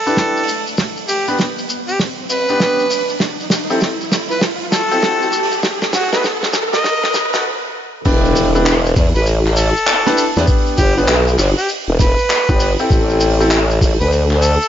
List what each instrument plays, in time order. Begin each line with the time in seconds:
Already playing: harmonica A4, riser
0.06 grand piano D4 E4 G4 B4, open hi-hat, shekere
0.17 grand piano D4 E4 B4, kick, snare, shekere
0.36 open hi-hat, shekere
0.43 open hi-hat
0.48 shekere
0.67 open hi-hat, shekere
0.77 kick, snare, open hi-hat, shekere
0.97 open hi-hat, shekere
1.08 harmonica G4, open hi-hat, shekere
1.28 grand piano B3 D4 G4 B4, open hi-hat, shekere
1.39 kick, snare, open hi-hat, shekere
1.58 open hi-hat, shekere
1.69 shekere
1.87 harmonica G4, open hi-hat, shekere
1.99 kick, snare, open hi-hat, shekere
2.29 harmonica B4, open hi-hat, shekere
2.49 grand piano B3 D4 G4 B4, shekere
2.59 grand piano B3 D4 G4 B4, kick, snare, open hi-hat, shekere
2.79 open hi-hat, shekere
2.90 open hi-hat, shekere
3.09 open hi-hat, shekere
3.20 kick, snare, open hi-hat, shekere
3.40 open hi-hat, shekere
3.50 snare, open hi-hat, shekere
3.70 grand piano C4 E4 G4 A4, open hi-hat, shekere
3.81 kick, snare, open hi-hat, shekere
4.01 open hi-hat, shekere
4.11 snare, open hi-hat, shekere
4.30 harmonica B4, open hi-hat, shekere
4.33 open hi-hat
4.36 open hi-hat
4.38 open hi-hat, shekere
4.41 kick, snare, open hi-hat
4.46 open hi-hat
4.51 open hi-hat
4.55 open hi-hat
4.61 open hi-hat
4.72 harmonica A4, snare, open hi-hat, shekere
4.91 grand piano C4 E4 G4 A4, open hi-hat, shekere
5.02 grand piano C4 E4 G4 A4, kick, snare, open hi-hat, shekere
5.22 open hi-hat, shekere
5.32 shekere
5.43 open hi-hat
5.51 open hi-hat, shekere
5.63 kick, snare, open hi-hat, shekere
5.82 snare, open hi-hat, shekere
5.93 harmonica F#4, snare, open hi-hat, shekere
6.12 grand piano B3 D#4 F#4 A4, harmonica B4, snare, open hi-hat, shekere
6.24 kick, snare, open hi-hat, shekere
6.43 snare, open hi-hat, shekere
6.53 snare, shekere
6.73 harmonica D#5, snare, open hi-hat, shekere
6.84 kick, snare, open hi-hat, shekere
7.03 snare, open hi-hat
7.14 snare, shekere
7.33 grand piano B3 D#4 F#4 A4, snare, open hi-hat, shekere
8.05 wobble bass E1, grand piano D4 E4 G4 B4, kick, open hi-hat, crash, impact, shekere
8.24 open hi-hat, shekere
8.35 open hi-hat, shekere
8.55 grand piano D4 E4 G4 B4, open hi-hat, shekere
8.66 clap, open hi-hat, shekere
8.85 open hi-hat, shekere
8.96 wobble bass E2, kick, open hi-hat, shekere
9.15 wobble bass A1, harmonica B4, open hi-hat, shekere
9.26 open hi-hat, shekere
9.46 clap, open hi-hat
9.56 harmonica A4, open hi-hat, shekere
9.76 shekere
9.87 clap, open hi-hat, shekere
10.06 grand piano D4 E4 G4 B4, snare, open hi-hat, shekere
10.17 open hi-hat, shekere
10.36 wobble bass E2, grand piano B3 D4 G4 B4, snare, open hi-hat, shekere
10.43 open hi-hat
10.47 kick, open hi-hat, shekere
10.58 open hi-hat
10.67 open hi-hat, shekere
10.78 wobble bass G1, harmonica G4, kick, open hi-hat, shekere
10.98 grand piano B3 D4 G4 B4, open hi-hat, shekere
11.07 wobble bass B1, clap, open hi-hat, shekere
11.27 open hi-hat, shekere
11.38 wobble bass G1, clap, open hi-hat, shekere
11.49 open hi-hat
11.58 harmonica G4, open hi-hat, shekere
11.59 open hi-hat
11.69 open hi-hat, shekere
11.88 wobble bass E1, open hi-hat
11.99 harmonica B4, kick, snare, open hi-hat, shekere
12.18 open hi-hat, shekere
12.29 clap, open hi-hat, shekere
12.49 wobble bass G1, grand piano B3 D4 G4 B4, kick, open hi-hat, shekere
12.60 open hi-hat, shekere
12.79 grand piano C4 E4 G4 A4, open hi-hat, shekere
12.90 wobble bass A1, kick, open hi-hat, shekere
13.10 open hi-hat, shekere
13.20 open hi-hat, shekere
13.30 open hi-hat
13.40 grand piano C4 E4 G4 A4, open hi-hat, shekere
13.51 clap, shekere
13.70 open hi-hat, shekere
13.81 wobble bass A1, kick, open hi-hat, shekere
14.00 wobble bass D2, harmonica B4, open hi-hat, shekere
14.11 open hi-hat, shekere
14.21 open hi-hat
14.31 clap
14.42 harmonica A4, open hi-hat, shekere
14.61 open hi-hat, shekere